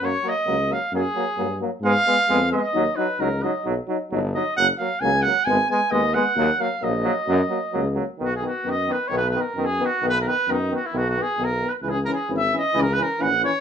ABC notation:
X:1
M:2/4
L:1/16
Q:"Swing 16ths" 1/4=132
K:F#
V:1 name="Trumpet"
c2 d4 e2 | G6 z2 | e6 d2- | d2 B2 A2 d2 |
z6 d2 | f2 e2 g2 f2 | g2 g2 d2 f2- | f2 e2 d4- |
d6 z2 | [K:B] F G F2 d2 B c | B B A2 G2 F2 | B A B2 D2 F E |
F F G2 A2 B/2 B/2 B | G A G2 e2 d2 | A B A2 f2 c2 |]
V:2 name="Euphonium"
A,2 A,2 A,2 A,2 | A,2 A,2 A,2 A,2 | B,2 B,2 B,2 B,2 | D2 D2 D2 D2 |
D2 D2 D2 D2 | A,2 A,2 A,2 A,2 | B,2 B,2 B,2 B,2 | A,2 A,2 A,2 A,2 |
A,2 A,2 A,2 A,2 | [K:B] B,2 B,2 B,2 B,2 | B,2 B,2 B,2 B,2 | B,2 B,2 B,2 B,2 |
B,2 B,2 B,2 B,2 | C2 C2 C2 C2 | C2 C2 C2 C2 |]
V:3 name="Trombone" clef=bass
F,2 F,2 F,2 F,2 | F,2 F,2 F,2 F,2 | G,2 G,2 G,2 G,2 | F,2 F,2 F,2 F,2 |
F,2 F,2 F,2 F,2 | F,2 F,2 F,2 F,2 | G,2 G,2 G,2 G,2 | F,2 F,2 F,2 F,2 |
F,2 F,2 F,2 F,2 | [K:B] D,2 D,2 D,2 D,2 | D,2 D,2 D,2 D,2 | D,2 D,2 D,2 D,2 |
D,2 D,2 D,2 D,2 | E,2 E,2 E,2 E,2 | E,2 E,2 E,2 E,2 |]
V:4 name="Tuba" clef=bass
F,,2 z2 C,,4 | F,,2 z2 =G,,4 | G,,2 z2 E,,4 | D,,2 z2 C,,4 |
B,,,2 z2 =G,,,4 | F,,,2 z2 C,,4 | G,,,2 z2 D,,4 | D,,2 z2 A,,,4 |
F,,2 z2 C,,4 | [K:B] B,,,4 F,,4 | B,,,4 F,,4 | B,,,4 F,,4 |
B,,,4 B,,,4 | C,,4 G,,,4 | C,,4 A,,,4 |]